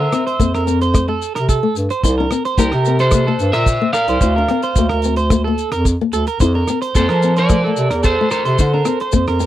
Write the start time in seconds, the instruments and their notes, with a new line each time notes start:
Already playing: clean electric guitar C5 E5
0.00 clean electric guitar A#4
0.12 nylon-string guitar C4, cross-stick, closed hi-hat, maracas
0.27 clean electric guitar C5, closed hi-hat
0.40 bass clarinet F2, nylon-string guitar A#3, kick, closed hi-hat, maracas
0.55 bass clarinet F2, clean electric guitar A#4, cross-stick, maracas
0.67 nylon-string guitar C4, closed hi-hat, maracas
0.81 clean electric guitar C5, closed hi-hat, maracas
0.94 nylon-string guitar A3, kick, cross-stick, closed hi-hat, maracas
1.08 nylon-string guitar A3, clean electric guitar A4
1.22 closed hi-hat, maracas
1.35 bass clarinet C3, clean electric guitar A#4, cross-stick, closed hi-hat, maracas
1.49 clean electric guitar A4, kick, closed hi-hat, maracas
1.63 nylon-string guitar A3
1.76 bass clarinet G2, closed hi-hat, maracas
1.90 clean electric guitar C5, closed hi-hat, maracas
2.03 bass clarinet C2, clean electric guitar C5, muted nylon-string guitar stroke, kick, closed hi-hat, maracas
2.18 nylon-string guitar D4, clean electric guitar A#4
2.31 nylon-string guitar C4, cross-stick, closed hi-hat, maracas
2.45 clean electric guitar C5, closed hi-hat
2.58 bass clarinet C2, nylon-string guitar A#3, clean electric guitar G4 A#4, kick, closed hi-hat, maracas
2.72 bass clarinet C3, clean electric guitar A#4, cross-stick
2.85 nylon-string guitar C4, closed hi-hat, maracas
2.99 clean electric guitar A4 C5, closed hi-hat, maracas
3.11 nylon-string guitar A#3, kick, cross-stick, closed hi-hat, maracas
3.27 nylon-string guitar A#3, clean electric guitar A4
3.39 bass clarinet G2, closed hi-hat, maracas
3.53 bass clarinet A#2, clean electric guitar A#4 C5 E5, cross-stick, closed hi-hat, maracas
3.66 kick, closed hi-hat, maracas
3.81 nylon-string guitar A#3
3.93 clean electric guitar A#4 D5 F5, cross-stick, closed hi-hat, maracas
4.08 bass clarinet C2, clean electric guitar C5, closed hi-hat, maracas
4.21 bass clarinet D2, nylon-string guitar E4, clean electric guitar C5, kick, closed hi-hat, maracas
4.36 nylon-string guitar D4, clean electric guitar A#4
4.48 nylon-string guitar C4, cross-stick, closed hi-hat
4.62 clean electric guitar C5, closed hi-hat, maracas
4.75 bass clarinet D2, nylon-string guitar A#3, kick, closed hi-hat, maracas
4.89 bass clarinet D2, clean electric guitar A#4, cross-stick
5.02 nylon-string guitar C4, closed hi-hat, maracas
5.16 clean electric guitar C5, closed hi-hat, maracas
5.30 nylon-string guitar A#3, kick, cross-stick, closed hi-hat, maracas
5.44 nylon-string guitar A#3, clean electric guitar A4
5.58 closed hi-hat, maracas
5.72 bass clarinet F2, clean electric guitar A#4, cross-stick, closed hi-hat, maracas
5.85 kick, closed hi-hat, maracas
6.01 nylon-string guitar A#3
6.13 bass clarinet D2, clean electric guitar A4, closed hi-hat, maracas
6.27 clean electric guitar A#4, closed hi-hat, maracas
6.40 bass clarinet F2, nylon-string guitar E4, clean electric guitar C5, kick, closed hi-hat, maracas
6.55 nylon-string guitar D4, clean electric guitar A#4
6.67 nylon-string guitar C4, cross-stick, closed hi-hat, maracas
6.82 clean electric guitar C5, closed hi-hat, maracas
6.95 bass clarinet F2, nylon-string guitar A#3, clean electric guitar A4 C5, kick, closed hi-hat, maracas
7.09 bass clarinet F3, clean electric guitar A#4, cross-stick
7.22 nylon-string guitar C4, closed hi-hat, maracas
7.36 clean electric guitar A#4 C5 D5, closed hi-hat, maracas
7.49 nylon-string guitar A3, kick, cross-stick, closed hi-hat, maracas
7.64 nylon-string guitar A3, clean electric guitar A4
7.77 bass clarinet C3, closed hi-hat, maracas
7.90 bass clarinet E2, clean electric guitar A#4, cross-stick, closed hi-hat, maracas
8.03 clean electric guitar A4 C5, kick, closed hi-hat, maracas
8.21 nylon-string guitar A3
8.31 clean electric guitar A4 A#4 C5, cross-stick, closed hi-hat, maracas
8.45 bass clarinet C3, clean electric guitar C5, closed hi-hat, maracas
8.59 bass clarinet D3, nylon-string guitar E4, clean electric guitar C5, kick, closed hi-hat, maracas
8.74 nylon-string guitar D4, clean electric guitar A#4
8.85 nylon-string guitar C4, cross-stick, closed hi-hat, maracas
9.00 clean electric guitar C5, closed hi-hat
9.12 bass clarinet F2, nylon-string guitar A#3, kick, closed hi-hat, maracas
9.27 bass clarinet F2, clean electric guitar A#4, cross-stick, maracas
9.40 nylon-string guitar C4, closed hi-hat, maracas